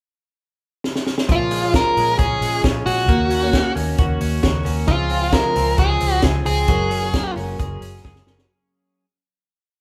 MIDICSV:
0, 0, Header, 1, 6, 480
1, 0, Start_track
1, 0, Key_signature, -5, "minor"
1, 0, Tempo, 450450
1, 1376, Time_signature, 4, 2, 24, 8
1, 10449, End_track
2, 0, Start_track
2, 0, Title_t, "Lead electric guitar"
2, 0, Program_c, 0, 29
2, 1402, Note_on_c, 0, 65, 72
2, 1835, Note_off_c, 0, 65, 0
2, 1872, Note_on_c, 0, 70, 83
2, 2326, Note_off_c, 0, 70, 0
2, 2330, Note_on_c, 0, 68, 74
2, 2776, Note_off_c, 0, 68, 0
2, 3046, Note_on_c, 0, 66, 95
2, 3962, Note_off_c, 0, 66, 0
2, 5197, Note_on_c, 0, 65, 83
2, 5681, Note_on_c, 0, 70, 83
2, 5695, Note_off_c, 0, 65, 0
2, 6129, Note_off_c, 0, 70, 0
2, 6173, Note_on_c, 0, 68, 82
2, 6616, Note_off_c, 0, 68, 0
2, 6884, Note_on_c, 0, 68, 98
2, 7806, Note_off_c, 0, 68, 0
2, 10449, End_track
3, 0, Start_track
3, 0, Title_t, "Clean electric guitar"
3, 0, Program_c, 1, 27
3, 1374, Note_on_c, 1, 53, 70
3, 1612, Note_on_c, 1, 56, 55
3, 1847, Note_off_c, 1, 53, 0
3, 1860, Note_on_c, 1, 53, 50
3, 2092, Note_off_c, 1, 56, 0
3, 2105, Note_on_c, 1, 56, 55
3, 2334, Note_on_c, 1, 61, 70
3, 2569, Note_off_c, 1, 56, 0
3, 2582, Note_on_c, 1, 56, 52
3, 2812, Note_off_c, 1, 61, 0
3, 2816, Note_on_c, 1, 61, 63
3, 3045, Note_off_c, 1, 56, 0
3, 3058, Note_on_c, 1, 56, 55
3, 3287, Note_off_c, 1, 56, 0
3, 3292, Note_on_c, 1, 58, 82
3, 3340, Note_off_c, 1, 53, 0
3, 3518, Note_off_c, 1, 61, 0
3, 3522, Note_on_c, 1, 61, 58
3, 3753, Note_off_c, 1, 58, 0
3, 3766, Note_on_c, 1, 58, 56
3, 3995, Note_off_c, 1, 61, 0
3, 4000, Note_on_c, 1, 61, 52
3, 4250, Note_on_c, 1, 66, 69
3, 4484, Note_off_c, 1, 61, 0
3, 4488, Note_on_c, 1, 61, 52
3, 4707, Note_off_c, 1, 66, 0
3, 4720, Note_on_c, 1, 66, 68
3, 4951, Note_off_c, 1, 61, 0
3, 4955, Note_on_c, 1, 61, 56
3, 5199, Note_on_c, 1, 53, 76
3, 5250, Note_off_c, 1, 66, 0
3, 5252, Note_off_c, 1, 58, 0
3, 5437, Note_off_c, 1, 61, 0
3, 5441, Note_on_c, 1, 60, 58
3, 5683, Note_on_c, 1, 56, 52
3, 5906, Note_off_c, 1, 60, 0
3, 5919, Note_on_c, 1, 60, 51
3, 6165, Note_on_c, 1, 66, 65
3, 6281, Note_off_c, 1, 66, 0
3, 6281, Note_on_c, 1, 68, 54
3, 6390, Note_off_c, 1, 60, 0
3, 6403, Note_on_c, 1, 60, 50
3, 6634, Note_off_c, 1, 68, 0
3, 6646, Note_on_c, 1, 68, 63
3, 6877, Note_off_c, 1, 60, 0
3, 6890, Note_on_c, 1, 60, 52
3, 7118, Note_off_c, 1, 53, 0
3, 7122, Note_on_c, 1, 54, 82
3, 7177, Note_off_c, 1, 60, 0
3, 7364, Note_on_c, 1, 61, 60
3, 7605, Note_off_c, 1, 56, 0
3, 7609, Note_on_c, 1, 58, 51
3, 7641, Note_off_c, 1, 68, 0
3, 7842, Note_off_c, 1, 61, 0
3, 7846, Note_on_c, 1, 61, 57
3, 8091, Note_on_c, 1, 68, 67
3, 8329, Note_off_c, 1, 61, 0
3, 8334, Note_on_c, 1, 61, 47
3, 8570, Note_off_c, 1, 68, 0
3, 8574, Note_on_c, 1, 68, 57
3, 8816, Note_off_c, 1, 61, 0
3, 8821, Note_on_c, 1, 61, 52
3, 9640, Note_off_c, 1, 54, 0
3, 9640, Note_off_c, 1, 58, 0
3, 9640, Note_off_c, 1, 61, 0
3, 9640, Note_off_c, 1, 68, 0
3, 10449, End_track
4, 0, Start_track
4, 0, Title_t, "Twelve-string acoustic guitar"
4, 0, Program_c, 2, 25
4, 1372, Note_on_c, 2, 46, 74
4, 1379, Note_on_c, 2, 53, 61
4, 1380, Note_on_c, 2, 56, 68
4, 1389, Note_on_c, 2, 61, 77
4, 1391, Note_on_c, 2, 65, 76
4, 1718, Note_off_c, 2, 65, 0
4, 1731, Note_on_c, 2, 65, 52
4, 1733, Note_off_c, 2, 46, 0
4, 1736, Note_off_c, 2, 53, 0
4, 1737, Note_off_c, 2, 56, 0
4, 1737, Note_off_c, 2, 61, 0
4, 1750, Note_on_c, 2, 61, 41
4, 1759, Note_on_c, 2, 56, 42
4, 2088, Note_on_c, 2, 53, 58
4, 2090, Note_off_c, 2, 56, 0
4, 2091, Note_off_c, 2, 65, 0
4, 2096, Note_off_c, 2, 61, 0
4, 2103, Note_on_c, 2, 56, 68
4, 2109, Note_on_c, 2, 61, 64
4, 2122, Note_on_c, 2, 65, 59
4, 2311, Note_off_c, 2, 53, 0
4, 2324, Note_on_c, 2, 53, 56
4, 2325, Note_off_c, 2, 56, 0
4, 2332, Note_off_c, 2, 61, 0
4, 2338, Note_on_c, 2, 56, 51
4, 2345, Note_on_c, 2, 61, 60
4, 2347, Note_off_c, 2, 65, 0
4, 2359, Note_on_c, 2, 65, 56
4, 2798, Note_off_c, 2, 53, 0
4, 2808, Note_off_c, 2, 56, 0
4, 2811, Note_on_c, 2, 53, 45
4, 2821, Note_on_c, 2, 56, 56
4, 2824, Note_off_c, 2, 65, 0
4, 2826, Note_off_c, 2, 61, 0
4, 2830, Note_on_c, 2, 61, 52
4, 2843, Note_on_c, 2, 65, 60
4, 3036, Note_off_c, 2, 53, 0
4, 3043, Note_off_c, 2, 56, 0
4, 3049, Note_on_c, 2, 53, 52
4, 3056, Note_on_c, 2, 56, 58
4, 3060, Note_off_c, 2, 61, 0
4, 3063, Note_off_c, 2, 65, 0
4, 3070, Note_on_c, 2, 61, 54
4, 3076, Note_on_c, 2, 65, 70
4, 3277, Note_off_c, 2, 53, 0
4, 3282, Note_on_c, 2, 51, 78
4, 3283, Note_off_c, 2, 61, 0
4, 3287, Note_off_c, 2, 56, 0
4, 3291, Note_on_c, 2, 58, 72
4, 3296, Note_on_c, 2, 61, 76
4, 3298, Note_off_c, 2, 65, 0
4, 3303, Note_on_c, 2, 66, 82
4, 3622, Note_off_c, 2, 66, 0
4, 3635, Note_off_c, 2, 61, 0
4, 3635, Note_on_c, 2, 66, 53
4, 3644, Note_off_c, 2, 51, 0
4, 3648, Note_on_c, 2, 61, 54
4, 3649, Note_off_c, 2, 58, 0
4, 3664, Note_on_c, 2, 58, 48
4, 3988, Note_off_c, 2, 58, 0
4, 3993, Note_on_c, 2, 51, 71
4, 4000, Note_off_c, 2, 66, 0
4, 4001, Note_on_c, 2, 58, 68
4, 4003, Note_off_c, 2, 61, 0
4, 4016, Note_on_c, 2, 61, 71
4, 4025, Note_on_c, 2, 66, 74
4, 4215, Note_off_c, 2, 51, 0
4, 4227, Note_on_c, 2, 51, 61
4, 4231, Note_off_c, 2, 58, 0
4, 4238, Note_off_c, 2, 61, 0
4, 4244, Note_on_c, 2, 58, 62
4, 4246, Note_off_c, 2, 66, 0
4, 4250, Note_on_c, 2, 61, 70
4, 4259, Note_on_c, 2, 66, 70
4, 4696, Note_off_c, 2, 51, 0
4, 4705, Note_off_c, 2, 58, 0
4, 4709, Note_on_c, 2, 51, 60
4, 4718, Note_on_c, 2, 58, 63
4, 4725, Note_off_c, 2, 66, 0
4, 4726, Note_off_c, 2, 61, 0
4, 4730, Note_on_c, 2, 61, 58
4, 4738, Note_on_c, 2, 66, 64
4, 4924, Note_off_c, 2, 51, 0
4, 4934, Note_off_c, 2, 58, 0
4, 4936, Note_on_c, 2, 51, 66
4, 4944, Note_off_c, 2, 61, 0
4, 4947, Note_on_c, 2, 58, 68
4, 4956, Note_on_c, 2, 61, 73
4, 4959, Note_off_c, 2, 66, 0
4, 4972, Note_on_c, 2, 66, 75
4, 5185, Note_off_c, 2, 51, 0
4, 5190, Note_on_c, 2, 49, 69
4, 5196, Note_off_c, 2, 58, 0
4, 5200, Note_off_c, 2, 61, 0
4, 5202, Note_on_c, 2, 56, 75
4, 5208, Note_off_c, 2, 66, 0
4, 5211, Note_on_c, 2, 60, 68
4, 5215, Note_on_c, 2, 65, 80
4, 5537, Note_off_c, 2, 65, 0
4, 5550, Note_on_c, 2, 65, 53
4, 5553, Note_off_c, 2, 60, 0
4, 5557, Note_off_c, 2, 49, 0
4, 5563, Note_off_c, 2, 56, 0
4, 5566, Note_on_c, 2, 60, 43
4, 5581, Note_on_c, 2, 56, 46
4, 5905, Note_off_c, 2, 56, 0
4, 5905, Note_on_c, 2, 49, 59
4, 5912, Note_off_c, 2, 60, 0
4, 5918, Note_off_c, 2, 65, 0
4, 5918, Note_on_c, 2, 56, 59
4, 5925, Note_on_c, 2, 60, 73
4, 5930, Note_on_c, 2, 65, 65
4, 6138, Note_off_c, 2, 49, 0
4, 6151, Note_off_c, 2, 56, 0
4, 6151, Note_on_c, 2, 49, 54
4, 6158, Note_off_c, 2, 60, 0
4, 6164, Note_on_c, 2, 56, 55
4, 6168, Note_off_c, 2, 65, 0
4, 6170, Note_on_c, 2, 60, 51
4, 6185, Note_on_c, 2, 65, 58
4, 6617, Note_off_c, 2, 49, 0
4, 6630, Note_on_c, 2, 49, 56
4, 6637, Note_off_c, 2, 56, 0
4, 6641, Note_off_c, 2, 60, 0
4, 6641, Note_on_c, 2, 56, 54
4, 6646, Note_off_c, 2, 65, 0
4, 6654, Note_on_c, 2, 60, 52
4, 6659, Note_on_c, 2, 65, 57
4, 6861, Note_off_c, 2, 49, 0
4, 6873, Note_off_c, 2, 56, 0
4, 6874, Note_on_c, 2, 49, 56
4, 6878, Note_off_c, 2, 60, 0
4, 6886, Note_on_c, 2, 56, 63
4, 6891, Note_on_c, 2, 60, 54
4, 6893, Note_off_c, 2, 65, 0
4, 6903, Note_on_c, 2, 65, 61
4, 7115, Note_off_c, 2, 56, 0
4, 7116, Note_off_c, 2, 49, 0
4, 7121, Note_on_c, 2, 54, 78
4, 7126, Note_off_c, 2, 60, 0
4, 7128, Note_on_c, 2, 56, 71
4, 7130, Note_on_c, 2, 61, 74
4, 7132, Note_off_c, 2, 65, 0
4, 7136, Note_on_c, 2, 66, 79
4, 7138, Note_on_c, 2, 70, 78
4, 7466, Note_off_c, 2, 70, 0
4, 7479, Note_on_c, 2, 70, 58
4, 7480, Note_off_c, 2, 66, 0
4, 7485, Note_off_c, 2, 54, 0
4, 7489, Note_off_c, 2, 56, 0
4, 7490, Note_off_c, 2, 61, 0
4, 7493, Note_on_c, 2, 66, 46
4, 7508, Note_on_c, 2, 61, 44
4, 7840, Note_on_c, 2, 56, 72
4, 7845, Note_off_c, 2, 61, 0
4, 7845, Note_off_c, 2, 70, 0
4, 7847, Note_off_c, 2, 66, 0
4, 7857, Note_on_c, 2, 61, 69
4, 7860, Note_on_c, 2, 66, 75
4, 7875, Note_on_c, 2, 70, 81
4, 8069, Note_off_c, 2, 56, 0
4, 8082, Note_on_c, 2, 56, 64
4, 8086, Note_off_c, 2, 61, 0
4, 8096, Note_off_c, 2, 66, 0
4, 8099, Note_on_c, 2, 61, 56
4, 8103, Note_off_c, 2, 70, 0
4, 8109, Note_on_c, 2, 66, 63
4, 8117, Note_on_c, 2, 70, 72
4, 8555, Note_off_c, 2, 56, 0
4, 8560, Note_on_c, 2, 56, 64
4, 8570, Note_off_c, 2, 61, 0
4, 8574, Note_on_c, 2, 61, 62
4, 8580, Note_off_c, 2, 66, 0
4, 8585, Note_on_c, 2, 66, 65
4, 8588, Note_off_c, 2, 70, 0
4, 8592, Note_on_c, 2, 70, 57
4, 8785, Note_off_c, 2, 56, 0
4, 8797, Note_off_c, 2, 61, 0
4, 8798, Note_on_c, 2, 56, 53
4, 8808, Note_off_c, 2, 66, 0
4, 8810, Note_on_c, 2, 61, 59
4, 8816, Note_off_c, 2, 70, 0
4, 8821, Note_on_c, 2, 66, 70
4, 8828, Note_on_c, 2, 70, 70
4, 9047, Note_off_c, 2, 56, 0
4, 9053, Note_off_c, 2, 61, 0
4, 9058, Note_off_c, 2, 66, 0
4, 9062, Note_off_c, 2, 70, 0
4, 10449, End_track
5, 0, Start_track
5, 0, Title_t, "Fingered electric bass"
5, 0, Program_c, 3, 33
5, 1376, Note_on_c, 3, 34, 91
5, 1944, Note_off_c, 3, 34, 0
5, 2097, Note_on_c, 3, 34, 91
5, 2291, Note_off_c, 3, 34, 0
5, 2336, Note_on_c, 3, 34, 80
5, 2531, Note_off_c, 3, 34, 0
5, 2568, Note_on_c, 3, 34, 76
5, 2765, Note_off_c, 3, 34, 0
5, 2815, Note_on_c, 3, 34, 81
5, 3009, Note_off_c, 3, 34, 0
5, 3048, Note_on_c, 3, 34, 82
5, 3288, Note_off_c, 3, 34, 0
5, 3288, Note_on_c, 3, 39, 99
5, 3857, Note_off_c, 3, 39, 0
5, 4005, Note_on_c, 3, 39, 88
5, 4202, Note_off_c, 3, 39, 0
5, 4252, Note_on_c, 3, 39, 99
5, 4446, Note_off_c, 3, 39, 0
5, 4482, Note_on_c, 3, 39, 86
5, 4680, Note_off_c, 3, 39, 0
5, 4727, Note_on_c, 3, 39, 88
5, 4923, Note_off_c, 3, 39, 0
5, 4960, Note_on_c, 3, 39, 86
5, 5159, Note_off_c, 3, 39, 0
5, 5199, Note_on_c, 3, 37, 96
5, 5772, Note_off_c, 3, 37, 0
5, 5923, Note_on_c, 3, 37, 91
5, 6121, Note_off_c, 3, 37, 0
5, 6165, Note_on_c, 3, 37, 88
5, 6362, Note_off_c, 3, 37, 0
5, 6407, Note_on_c, 3, 37, 87
5, 6604, Note_off_c, 3, 37, 0
5, 6644, Note_on_c, 3, 37, 88
5, 6842, Note_off_c, 3, 37, 0
5, 6877, Note_on_c, 3, 37, 97
5, 7078, Note_off_c, 3, 37, 0
5, 7122, Note_on_c, 3, 30, 87
5, 7696, Note_off_c, 3, 30, 0
5, 7842, Note_on_c, 3, 30, 79
5, 8043, Note_off_c, 3, 30, 0
5, 8096, Note_on_c, 3, 30, 84
5, 8291, Note_off_c, 3, 30, 0
5, 8577, Note_on_c, 3, 30, 78
5, 8773, Note_off_c, 3, 30, 0
5, 8807, Note_on_c, 3, 30, 87
5, 9008, Note_off_c, 3, 30, 0
5, 10449, End_track
6, 0, Start_track
6, 0, Title_t, "Drums"
6, 897, Note_on_c, 9, 38, 64
6, 1004, Note_off_c, 9, 38, 0
6, 1018, Note_on_c, 9, 38, 66
6, 1124, Note_off_c, 9, 38, 0
6, 1135, Note_on_c, 9, 38, 69
6, 1242, Note_off_c, 9, 38, 0
6, 1255, Note_on_c, 9, 38, 83
6, 1362, Note_off_c, 9, 38, 0
6, 1372, Note_on_c, 9, 42, 58
6, 1376, Note_on_c, 9, 36, 95
6, 1479, Note_off_c, 9, 42, 0
6, 1483, Note_off_c, 9, 36, 0
6, 1607, Note_on_c, 9, 46, 68
6, 1713, Note_off_c, 9, 46, 0
6, 1851, Note_on_c, 9, 42, 66
6, 1853, Note_on_c, 9, 36, 90
6, 1853, Note_on_c, 9, 38, 92
6, 1957, Note_off_c, 9, 42, 0
6, 1959, Note_off_c, 9, 36, 0
6, 1960, Note_off_c, 9, 38, 0
6, 2100, Note_on_c, 9, 46, 63
6, 2207, Note_off_c, 9, 46, 0
6, 2329, Note_on_c, 9, 42, 64
6, 2336, Note_on_c, 9, 36, 92
6, 2436, Note_off_c, 9, 42, 0
6, 2442, Note_off_c, 9, 36, 0
6, 2577, Note_on_c, 9, 46, 66
6, 2683, Note_off_c, 9, 46, 0
6, 2812, Note_on_c, 9, 42, 69
6, 2814, Note_on_c, 9, 36, 85
6, 2815, Note_on_c, 9, 38, 97
6, 2918, Note_off_c, 9, 42, 0
6, 2921, Note_off_c, 9, 36, 0
6, 2921, Note_off_c, 9, 38, 0
6, 3054, Note_on_c, 9, 46, 63
6, 3160, Note_off_c, 9, 46, 0
6, 3289, Note_on_c, 9, 36, 97
6, 3290, Note_on_c, 9, 42, 59
6, 3395, Note_off_c, 9, 36, 0
6, 3397, Note_off_c, 9, 42, 0
6, 3519, Note_on_c, 9, 46, 67
6, 3626, Note_off_c, 9, 46, 0
6, 3763, Note_on_c, 9, 42, 71
6, 3765, Note_on_c, 9, 36, 91
6, 3766, Note_on_c, 9, 38, 95
6, 3870, Note_off_c, 9, 42, 0
6, 3872, Note_off_c, 9, 36, 0
6, 3872, Note_off_c, 9, 38, 0
6, 4012, Note_on_c, 9, 46, 62
6, 4119, Note_off_c, 9, 46, 0
6, 4243, Note_on_c, 9, 42, 65
6, 4248, Note_on_c, 9, 36, 96
6, 4350, Note_off_c, 9, 42, 0
6, 4355, Note_off_c, 9, 36, 0
6, 4482, Note_on_c, 9, 46, 66
6, 4589, Note_off_c, 9, 46, 0
6, 4720, Note_on_c, 9, 42, 75
6, 4723, Note_on_c, 9, 38, 93
6, 4727, Note_on_c, 9, 36, 89
6, 4827, Note_off_c, 9, 42, 0
6, 4830, Note_off_c, 9, 38, 0
6, 4833, Note_off_c, 9, 36, 0
6, 4964, Note_on_c, 9, 46, 64
6, 5071, Note_off_c, 9, 46, 0
6, 5197, Note_on_c, 9, 42, 58
6, 5201, Note_on_c, 9, 36, 94
6, 5304, Note_off_c, 9, 42, 0
6, 5307, Note_off_c, 9, 36, 0
6, 5430, Note_on_c, 9, 46, 71
6, 5536, Note_off_c, 9, 46, 0
6, 5673, Note_on_c, 9, 42, 64
6, 5675, Note_on_c, 9, 38, 103
6, 5677, Note_on_c, 9, 36, 90
6, 5779, Note_off_c, 9, 42, 0
6, 5782, Note_off_c, 9, 38, 0
6, 5784, Note_off_c, 9, 36, 0
6, 5921, Note_on_c, 9, 46, 69
6, 6027, Note_off_c, 9, 46, 0
6, 6156, Note_on_c, 9, 42, 75
6, 6162, Note_on_c, 9, 36, 100
6, 6263, Note_off_c, 9, 42, 0
6, 6269, Note_off_c, 9, 36, 0
6, 6398, Note_on_c, 9, 46, 64
6, 6504, Note_off_c, 9, 46, 0
6, 6630, Note_on_c, 9, 42, 69
6, 6633, Note_on_c, 9, 38, 94
6, 6643, Note_on_c, 9, 36, 93
6, 6736, Note_off_c, 9, 42, 0
6, 6740, Note_off_c, 9, 38, 0
6, 6749, Note_off_c, 9, 36, 0
6, 6881, Note_on_c, 9, 46, 63
6, 6987, Note_off_c, 9, 46, 0
6, 7115, Note_on_c, 9, 42, 57
6, 7122, Note_on_c, 9, 36, 94
6, 7221, Note_off_c, 9, 42, 0
6, 7229, Note_off_c, 9, 36, 0
6, 7360, Note_on_c, 9, 46, 68
6, 7467, Note_off_c, 9, 46, 0
6, 7603, Note_on_c, 9, 42, 68
6, 7606, Note_on_c, 9, 36, 97
6, 7606, Note_on_c, 9, 38, 97
6, 7710, Note_off_c, 9, 42, 0
6, 7712, Note_off_c, 9, 36, 0
6, 7712, Note_off_c, 9, 38, 0
6, 7855, Note_on_c, 9, 46, 71
6, 7961, Note_off_c, 9, 46, 0
6, 8091, Note_on_c, 9, 42, 62
6, 8094, Note_on_c, 9, 36, 93
6, 8198, Note_off_c, 9, 42, 0
6, 8201, Note_off_c, 9, 36, 0
6, 8331, Note_on_c, 9, 46, 68
6, 8438, Note_off_c, 9, 46, 0
6, 8570, Note_on_c, 9, 38, 47
6, 8575, Note_on_c, 9, 36, 85
6, 8677, Note_off_c, 9, 38, 0
6, 8682, Note_off_c, 9, 36, 0
6, 8691, Note_on_c, 9, 38, 53
6, 8798, Note_off_c, 9, 38, 0
6, 8811, Note_on_c, 9, 38, 73
6, 8917, Note_off_c, 9, 38, 0
6, 8936, Note_on_c, 9, 38, 82
6, 9042, Note_off_c, 9, 38, 0
6, 10449, End_track
0, 0, End_of_file